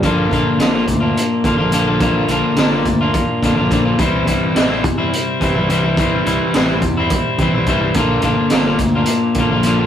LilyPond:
<<
  \new Staff \with { instrumentName = "Clean electric guitar" } { \time 7/8 \key bes \lydian \tempo 4 = 106 <bes, d bes d' f'>8 <d bes d' f'>8 <bes, d bes d' f'>16 <bes d' f'>8 <bes d' f'>8. <d bes d' f'>16 <bes d' f'>16 <bes, d bes d' f'>16 <bes d' f'>16 | <bes, d bes d' f'>8 <d bes d' f'>8 <bes, d bes d' f'>16 <bes d' f'>8 <bes d' f'>8. <d bes d' f'>16 <bes d' f'>16 <bes, d bes d' f'>16 <bes d' f'>16 | <c e g c' e'>8 <e g c' e'>8 <c e g c' e'>16 <g c' e'>8 <g c' e'>8. <e g c' e'>16 <g c' e'>16 <c e g c' e'>16 <g c' e'>16 | <c e g c' e'>8 <e g c' e'>8 <c e g c' e'>16 <g c' e'>8 <g c' e'>8. <e g c' e'>16 <g c' e'>16 <c e g c' e'>16 <g c' e'>16 |
<bes, d bes d' f'>8 <d bes d' f'>8 <bes, d bes d' f'>16 <bes d' f'>8 <bes d' f'>8. <d bes d' f'>16 <bes d' f'>16 <bes, d bes d' f'>16 <bes d' f'>16 | }
  \new Staff \with { instrumentName = "Fingered electric bass" } { \clef bass \time 7/8 \key bes \lydian bes,,8 bes,,16 r16 g,,8 d,8 r8 bes,16 bes,,8.~ | bes,,8 bes,,16 r16 g,,8 d,8 r8 bes,16 bes,,8. | c,8 c,16 r16 a,,8 e,8 r8 c16 c,8.~ | c,8 c,16 r16 a,,8 e,8 r8 c16 c,8. |
bes,,8 bes,,16 r16 g,,8 d,8 r8 bes,16 bes,,8. | }
  \new DrumStaff \with { instrumentName = "Drums" } \drummode { \time 7/8 <hh bd>8 <hh bd>8 <hh sn>8 <hh bd>8 hh8 <hh bd>8 hh8 | <hh bd>8 hh8 <hh sn>8 <hh bd>8 <hh bd>8 <hh bd sn>8 <hh bd>8 | <hh bd>8 <hh bd>8 <hh sn>8 <hh bd>8 hh8 <hh bd>8 hh8 | <hh bd>8 hh8 <hh sn>8 <hh bd>8 <hh bd>8 <hh bd>8 <hh bd>8 |
<hh bd>8 <hh bd>8 <hh sn>8 <hh bd>8 hh8 <hh bd>8 hh8 | }
>>